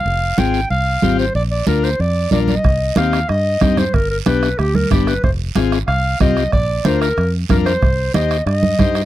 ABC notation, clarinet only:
X:1
M:4/4
L:1/8
Q:1/4=185
K:Cm
V:1 name="Clarinet"
f2 g2 f3 c | d d B c d2 d e- | e2 f2 e3 c | B B =B2 G _B G =B |
c z3 f2 e2 | d2 c B2 z B c- | c2 e2 e4 |]